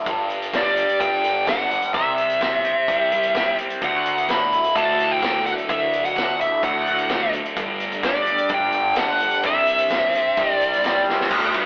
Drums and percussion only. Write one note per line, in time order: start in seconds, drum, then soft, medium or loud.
0.06 kick loud
0.06 closed hi-hat medium
0.06 shaker medium
0.30 closed hi-hat medium
0.30 shaker medium
0.42 closed hi-hat medium
0.53 kick loud
0.53 snare loud
0.53 closed hi-hat medium
0.53 shaker medium
0.77 closed hi-hat medium
0.77 shaker medium
0.89 closed hi-hat medium
1.00 kick loud
1.00 closed hi-hat medium
1.00 shaker loud
1.24 closed hi-hat medium
1.24 shaker medium
1.47 kick loud
1.47 snare loud
1.47 closed hi-hat medium
1.47 shaker medium
1.70 closed hi-hat medium
1.70 shaker medium
1.82 closed hi-hat medium
1.93 kick loud
1.93 closed hi-hat medium
1.93 shaker medium
2.17 closed hi-hat medium
2.17 shaker medium
2.30 closed hi-hat medium
2.41 kick loud
2.41 snare loud
2.41 closed hi-hat medium
2.41 shaker medium
2.64 closed hi-hat medium
2.64 shaker medium
2.88 kick loud
2.88 closed hi-hat medium
2.88 shaker medium
3.12 closed hi-hat medium
3.12 shaker medium
3.23 closed hi-hat medium
3.35 kick loud
3.35 snare loud
3.35 closed hi-hat medium
3.35 shaker medium
3.58 closed hi-hat medium
3.58 shaker medium
3.70 closed hi-hat medium
3.82 kick loud
3.82 closed hi-hat medium
3.82 shaker medium
4.05 closed hi-hat medium
4.05 shaker medium
4.18 closed hi-hat medium
4.29 kick loud
4.29 snare loud
4.29 closed hi-hat medium
4.29 shaker medium
4.53 closed hi-hat medium
4.53 shaker medium
4.64 closed hi-hat medium
4.76 kick loud
4.76 closed hi-hat medium
4.76 shaker loud
4.99 closed hi-hat medium
4.99 shaker medium
5.22 kick loud
5.22 snare loud
5.22 closed hi-hat medium
5.22 shaker medium
5.46 closed hi-hat medium
5.58 closed hi-hat medium
5.69 kick loud
5.69 closed hi-hat medium
5.69 shaker medium
5.93 closed hi-hat medium
5.93 shaker medium
6.05 closed hi-hat medium
6.16 kick loud
6.16 snare loud
6.16 closed hi-hat medium
6.16 shaker medium
6.40 closed hi-hat medium
6.40 shaker medium
6.62 kick loud
6.62 closed hi-hat medium
6.62 shaker loud
6.86 closed hi-hat medium
6.86 shaker medium
6.98 closed hi-hat medium
7.09 kick loud
7.09 snare loud
7.09 closed hi-hat medium
7.09 shaker loud
7.33 closed hi-hat medium
7.33 shaker medium
7.45 closed hi-hat medium
7.57 kick loud
7.57 closed hi-hat medium
7.57 shaker loud
7.80 closed hi-hat medium
7.80 shaker medium
7.92 closed hi-hat medium
8.03 kick loud
8.03 snare loud
8.03 closed hi-hat medium
8.03 shaker loud
8.26 closed hi-hat medium
8.26 shaker medium
8.38 closed hi-hat medium
8.49 kick loud
8.49 closed hi-hat medium
8.49 shaker loud
8.72 closed hi-hat medium
8.72 shaker medium
8.95 kick loud
8.95 snare loud
8.95 closed hi-hat medium
8.95 shaker loud
9.19 closed hi-hat medium
9.19 shaker medium
9.31 closed hi-hat medium
9.43 kick loud
9.43 closed hi-hat medium
9.43 shaker loud
9.66 closed hi-hat medium
9.66 shaker medium
9.78 closed hi-hat medium
9.88 kick loud
9.88 snare medium
9.88 closed hi-hat medium
9.88 shaker loud
10.12 closed hi-hat medium
10.12 shaker medium
10.36 kick loud
10.36 closed hi-hat medium
10.36 shaker loud
10.60 closed hi-hat medium
10.60 shaker medium
10.73 snare soft
10.73 closed hi-hat medium
10.82 kick loud
10.82 snare loud
10.82 closed hi-hat medium
10.82 shaker loud
11.06 snare medium
11.06 shaker medium
11.20 snare medium
11.29 kick loud
11.29 crash loud
11.29 shaker loud
11.53 ride medium
11.53 shaker medium